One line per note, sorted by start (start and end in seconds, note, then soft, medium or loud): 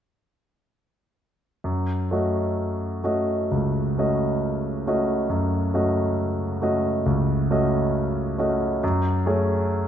1.64 2.09 F#2 soft
2.11 3.00 A3 soft
2.11 3.00 C#4 soft
2.11 3.01 F#4 soft
2.11 3.01 D#5 soft
3.04 3.47 A3 soft
3.04 3.47 C#4 soft
3.04 3.47 F#4 soft
3.04 3.47 D#5 soft
3.51 3.96 C#2 soft
3.98 4.82 A3 soft
3.98 4.83 C#4 soft
3.98 4.83 F#4 soft
3.98 4.83 D#5 soft
4.87 5.26 A3 soft
4.87 5.26 C#4 soft
4.87 5.26 F#4 soft
4.87 5.27 D#5 soft
5.29 5.72 F#2 soft
5.74 6.58 A3 soft
5.74 6.58 C#4 soft
5.74 6.58 F#4 soft
5.74 6.58 D#5 soft
6.62 7.02 A3 soft
6.62 7.02 C#4 soft
6.62 7.02 F#4 soft
6.62 7.02 D#5 soft
7.06 7.48 C#2 soft
7.51 8.35 A3 soft
7.51 8.35 C#4 soft
7.51 8.35 F#4 soft
7.51 8.35 D#5 soft
8.38 8.79 A3 soft
8.38 8.79 C#4 soft
8.38 8.79 F#4 soft
8.38 8.79 D#5 soft
8.83 9.26 F#2 soft
9.26 9.88 A3 soft
9.26 9.88 C#4 soft
9.26 9.88 G#4 soft
9.26 9.88 C#5 soft